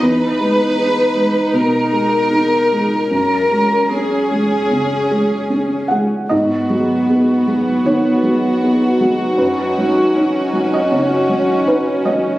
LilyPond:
<<
  \new Staff \with { instrumentName = "Violin section" } { \time 4/4 \key gis \minor \tempo 4 = 78 b'2 ais'2 | ais'4 gis'2~ gis'8 r8 | fis'1~ | fis'1 | }
  \new Staff \with { instrumentName = "Ambient pad" } { \time 4/4 \key gis \minor << { r1 | r1 | b'1 | cis''1 | } \\ { r1 | r1 | <dis' fis'>1~ | <dis' fis'>1 | } >> }
  \new Staff \with { instrumentName = "Felt piano" } { \time 4/4 \key gis \minor << { r1 | r2. r8 fis''8 | dis''2 cis''2 | b'4.~ b'16 dis''16 cis''4 b'8 dis''8 | } \\ { e,8 <gis gis'>8 <dis' gis'>8 <gis gis'>8 b,8 <gis gis'>8 <dis' gis'>8 <gis gis'>8 | fis,8 <gis gis'>8 <cis' gis'>8 <gis gis'>8 cis8 <gis gis'>8 <cis' gis'>8 <gis gis'>8 | gis,8 <fis gis'>8 <b gis'>8 <fis gis'>8 dis8 <fis gis'>8 <b gis'>8 <fis gis'>8 | fis,8 <fis cis''>8 <dis' cis''>8 <fis cis''>8 cis8 <fis cis''>8 <dis' cis''>8 <fis cis''>8 | } >> }
  \new Staff \with { instrumentName = "Viola" } { \time 4/4 \key gis \minor dis'1 | cis'2.~ cis'8. r16 | b1 | cis'1 | }
>>